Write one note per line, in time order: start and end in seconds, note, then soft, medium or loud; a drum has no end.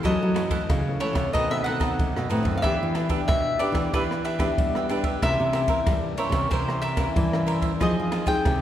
0.03 0.67 F#2 medium
0.03 0.16 E3 medium
0.03 0.19 F#3 medium
0.03 0.17 A3 medium
0.03 0.17 C#4 medium
0.03 0.33 E4 medium
0.03 0.34 A4 medium
0.03 0.35 C#5 medium
0.03 1.00 D#5 medium
0.03 0.35 F#5 medium
0.03 kick medium
0.03 cross-stick medium
0.03 ride medium
0.23 0.82 E3 medium
0.23 0.49 F#3 medium
0.23 0.82 A3 medium
0.23 0.82 C#4 medium
0.34 0.49 E4 medium
0.34 0.50 A4 soft
0.34 0.50 C#5 soft
0.34 0.50 F#5 medium
0.34 cross-stick medium
0.34 ride soft
0.51 0.61 E4 medium
0.51 0.61 A4 medium
0.51 0.61 C#5 medium
0.51 0.62 F#5 medium
0.51 kick medium
0.51 ride medium
0.70 0.97 C#3 medium
0.70 1.31 C#3 medium
0.70 kick medium
0.70 cross-stick medium
0.70 ride medium
0.88 0.98 E3 medium
0.88 0.98 A3 medium
0.88 0.98 C#4 medium
1.00 1.21 E3 medium
1.00 1.22 A3 medium
1.00 1.22 C#4 medium
1.00 1.16 E4 medium
1.00 1.15 A4 medium
1.00 1.33 C#5 medium
1.00 1.15 C#5 medium
1.00 1.14 F#5 medium
1.00 ride soft
1.13 1.29 C3 medium
1.13 1.32 A4 soft
1.13 1.32 C#5 soft
1.13 1.32 F#5 soft
1.13 kick medium
1.13 cross-stick medium
1.13 ride medium
1.33 1.89 B2 medium
1.33 1.97 B2 medium
1.33 1.62 D#3 medium
1.33 1.63 A3 medium
1.33 1.63 C4 medium
1.33 1.64 D#4 medium
1.33 1.65 A4 medium
1.33 1.65 B4 medium
1.33 1.51 D#5 loud
1.33 1.66 D#5 medium
1.33 kick medium
1.33 ride medium
1.51 1.64 E5 medium
1.51 cross-stick medium
1.64 2.09 D#3 medium
1.64 2.09 A3 medium
1.64 1.79 D#4 medium
1.64 1.79 A4 medium
1.64 1.79 B4 medium
1.64 1.79 D#5 medium
1.64 2.26 F#5 medium
1.64 ride soft
1.68 2.09 C4 medium
1.80 1.90 D#4 medium
1.80 1.90 A4 medium
1.80 1.91 B4 medium
1.80 1.91 D#5 medium
1.80 kick medium
1.80 cross-stick medium
1.80 ride soft
1.99 2.62 F#2 medium
1.99 2.14 C3 medium
1.99 kick medium
1.99 ride soft
2.16 2.31 B2 medium
2.16 2.29 A4 soft
2.16 2.29 B4 soft
2.16 2.30 D#5 soft
2.16 cross-stick medium
2.30 2.46 A2 medium
2.30 2.61 D#3 medium
2.30 2.62 A3 medium
2.30 2.62 C4 medium
2.30 2.45 D#4 medium
2.30 2.44 A4 medium
2.30 2.43 B4 medium
2.30 2.43 D#5 medium
2.30 ride soft
2.43 2.59 F#2 medium
2.43 2.61 A4 soft
2.43 2.61 B4 soft
2.43 2.61 D#5 medium
2.43 kick medium
2.43 ride soft
2.57 2.64 F5 medium
2.62 2.78 E3 loud
2.62 3.26 E3 medium
2.62 3.08 B3 medium
2.62 2.94 D4 medium
2.62 3.08 D4 medium
2.62 2.94 G4 medium
2.62 3.08 G4 medium
2.62 2.94 B4 medium
2.62 3.24 E5 loud
2.62 2.95 E5 medium
2.62 kick medium
2.62 cross-stick medium
2.62 ride soft
2.83 3.09 E3 medium
2.95 3.08 D4 soft
2.95 3.08 G4 medium
2.95 3.09 B4 medium
2.95 3.09 E5 medium
2.95 cross-stick medium
2.95 ride soft
3.09 3.55 B3 medium
3.09 3.20 D4 medium
3.09 3.55 D4 medium
3.09 3.20 G4 medium
3.09 3.55 G4 medium
3.09 3.20 B4 medium
3.09 3.20 E5 medium
3.09 kick medium
3.09 ride soft
3.28 3.56 B2 medium
3.28 3.91 B2 medium
3.28 3.61 E5 medium
3.28 kick loud
3.28 cross-stick medium
3.28 ride soft
3.59 3.88 B3 medium
3.59 3.75 D4 medium
3.59 3.88 D4 medium
3.59 3.75 G4 medium
3.59 3.89 G4 medium
3.59 3.75 B4 medium
3.59 3.93 D5 medium
3.59 3.74 E5 medium
3.59 ride soft
3.72 3.88 E3 medium
3.72 3.91 B4 soft
3.72 3.91 E5 soft
3.72 kick medium
3.72 cross-stick medium
3.72 ride medium
3.77 3.92 G4 soft
3.93 4.48 E3 medium
3.93 4.55 E3 medium
3.93 4.24 B3 medium
3.93 4.24 D4 medium
3.93 4.25 D4 soft
3.93 4.24 G4 medium
3.93 4.25 G4 medium
3.93 4.02 B4 medium
3.93 4.24 B4 medium
3.93 4.25 E5 medium
3.93 kick medium
3.93 ride medium
4.11 cross-stick medium
4.25 4.37 D4 soft
4.25 4.38 G4 medium
4.25 4.38 B4 medium
4.25 4.86 E5 medium
4.25 4.39 E5 medium
4.25 ride medium
4.39 4.84 B3 medium
4.39 4.49 D4 medium
4.39 4.84 D4 medium
4.39 4.50 G4 medium
4.39 4.84 G4 medium
4.39 4.50 B4 medium
4.39 4.50 E5 medium
4.39 kick medium
4.39 cross-stick medium
4.39 ride medium
4.58 5.20 B2 medium
4.58 5.13 G3 medium
4.58 kick medium
4.58 ride soft
4.75 4.89 G4 soft
4.75 4.90 B4 soft
4.75 4.90 E5 medium
4.75 cross-stick medium
4.89 5.17 B3 medium
4.89 5.05 D4 medium
4.89 5.17 D4 medium
4.89 5.17 G4 medium
4.89 5.04 G4 medium
4.89 5.04 B4 medium
4.89 5.03 E5 medium
4.89 ride soft
5.04 5.21 G4 soft
5.04 5.21 B4 soft
5.04 5.20 E5 medium
5.04 kick medium
5.04 ride medium
5.22 5.84 C3 medium
5.22 5.36 C3 loud
5.22 5.66 E3 medium
5.22 5.66 A#3 medium
5.22 5.67 C#4 medium
5.22 5.52 E4 medium
5.22 5.53 A#4 medium
5.22 5.54 C5 medium
5.22 6.17 E5 loud
5.22 5.54 E5 medium
5.22 kick medium
5.22 cross-stick medium
5.22 ride soft
5.40 5.67 C3 medium
5.53 5.67 E4 soft
5.53 5.68 A#4 medium
5.53 5.68 C5 medium
5.53 5.68 E5 medium
5.53 cross-stick medium
5.53 ride medium
5.68 6.13 E3 medium
5.68 6.13 A#3 medium
5.68 6.14 C#4 medium
5.68 5.79 E4 medium
5.68 5.79 A#4 medium
5.68 5.79 C5 medium
5.68 5.79 E5 medium
5.68 kick medium
5.68 ride medium
5.87 6.49 G2 medium
5.87 6.14 G3 medium
5.87 kick loud
5.87 cross-stick medium
5.87 ride medium
6.17 6.46 E3 medium
6.17 6.46 A#3 medium
6.17 6.46 C#4 medium
6.17 6.34 E4 medium
6.17 6.33 A#4 medium
6.17 6.32 C5 medium
6.17 6.50 C#5 medium
6.17 6.32 E5 medium
6.17 ride medium
6.30 6.46 C3 medium
6.30 6.50 C5 soft
6.30 6.49 E5 medium
6.30 kick medium
6.30 cross-stick medium
6.30 ride medium
6.34 6.50 A#4 soft
6.51 7.13 C3 medium
6.51 7.06 C3 medium
6.51 6.95 E3 medium
6.51 6.95 A#3 medium
6.51 6.96 C#4 medium
6.51 6.81 E4 medium
6.51 6.82 A#4 medium
6.51 6.81 C5 medium
6.51 6.82 C5 medium
6.51 6.83 E5 medium
6.51 kick medium
6.51 ride medium
6.69 cross-stick medium
6.82 6.96 E4 medium
6.82 6.96 A#4 medium
6.82 6.96 C5 soft
6.82 7.44 E5 loud
6.82 6.96 E5 medium
6.82 ride soft
6.97 7.26 E3 medium
6.97 7.26 A#3 medium
6.97 7.26 C#4 medium
6.97 7.08 E4 medium
6.97 7.08 A#4 medium
6.97 7.08 C5 medium
6.97 7.08 E5 medium
6.97 kick medium
6.97 cross-stick medium
6.97 ride medium
7.15 7.77 G2 medium
7.15 7.71 E3 medium
7.15 kick loud
7.15 ride medium
7.32 7.76 E3 medium
7.32 7.76 A#3 medium
7.32 7.76 C#4 medium
7.32 7.46 A#4 soft
7.32 7.46 C5 soft
7.32 7.47 E5 soft
7.32 cross-stick medium
7.47 7.63 E4 medium
7.47 7.62 A#4 medium
7.47 7.61 C5 medium
7.47 7.60 E5 medium
7.47 ride medium
7.62 7.79 A#4 soft
7.62 7.79 C5 soft
7.62 7.78 E5 medium
7.62 kick medium
7.62 ride medium
7.80 7.95 F3 loud
7.80 8.43 F3 medium
7.80 8.25 C4 medium
7.80 8.25 D#4 medium
7.80 8.10 F4 medium
7.80 8.11 G#4 medium
7.80 8.25 G#4 medium
7.80 8.12 C5 medium
7.80 8.12 D#5 medium
7.80 8.27 D#5 medium
7.80 kick medium
7.80 cross-stick medium
7.80 ride soft
8.00 8.26 F3 medium
8.12 8.25 F4 soft
8.12 8.25 G#4 medium
8.12 8.26 C5 medium
8.12 8.26 D#5 medium
8.12 cross-stick medium
8.12 ride soft
8.26 8.62 C4 medium
8.26 8.62 D#4 medium
8.26 8.37 F4 medium
8.26 8.37 G#4 medium
8.26 8.62 G#4 medium
8.26 8.37 C5 medium
8.26 8.38 D#5 medium
8.26 8.62 G5 medium
8.26 kick medium
8.26 ride medium
8.45 8.62 C3 loud
8.45 8.62 C3 medium
8.45 kick loud
8.45 cross-stick medium
8.45 ride medium